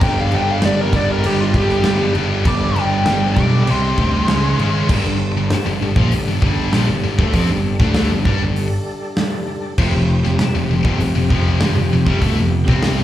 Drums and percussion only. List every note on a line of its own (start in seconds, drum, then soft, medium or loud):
0.01 kick loud
0.01 crash medium
0.32 crash medium
0.62 snare loud
0.62 crash medium
0.93 kick medium
0.93 crash medium
1.24 crash medium
1.54 kick medium
1.54 crash medium
1.69 snare soft
1.84 snare loud
1.84 crash medium
2.15 crash medium
2.45 kick loud
2.45 crash medium
2.76 crash medium
3.06 snare loud
3.06 crash medium
3.36 kick medium
3.36 crash medium
3.67 crash medium
3.98 kick medium
3.98 crash medium
4.28 snare loud
4.28 crash medium
4.59 crash medium
4.89 kick loud
4.89 crash loud
5.50 snare loud
5.50 open hi-hat medium
5.96 kick loud
6.12 open hi-hat medium
6.42 kick loud
6.73 snare loud
6.73 open hi-hat medium
7.19 kick loud
7.33 kick loud
7.33 open hi-hat medium
7.80 kick loud
7.80 snare soft
7.95 snare loud
7.95 open hi-hat medium
8.25 kick loud
8.56 open hi-hat medium
9.17 snare loud
9.17 open hi-hat medium
9.78 kick loud
9.78 crash loud
10.24 snare soft
10.39 snare loud
10.39 open hi-hat medium
10.85 kick loud
11.00 open hi-hat medium
11.30 kick loud
11.61 snare loud
11.61 open hi-hat medium
12.07 kick loud
12.22 kick loud
12.22 open hi-hat medium
12.68 kick loud
12.68 snare soft
12.83 snare loud
12.83 open hi-hat medium